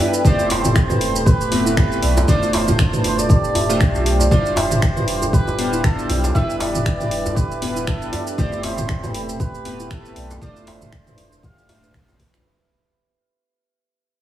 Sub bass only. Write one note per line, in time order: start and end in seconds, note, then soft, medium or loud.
0.25 1.17 E1 loud
1.16 1.99 D1 medium
2.03 2.23 B1 loud
2.28 3.20 E1 loud
3.19 3.82 D1 loud
3.81 4.28 B1 medium
4.31 5.23 E1 loud
5.22 6.05 D1 loud
6.09 6.30 B1 loud
6.35 7.27 E1 loud
7.25 8.09 D1 medium
8.38 9.30 E1 loud
9.29 10.12 D1 loud
10.16 10.37 B1 loud
10.42 11.34 E1 loud
11.32 11.96 D1 loud
11.94 12.41 B1 medium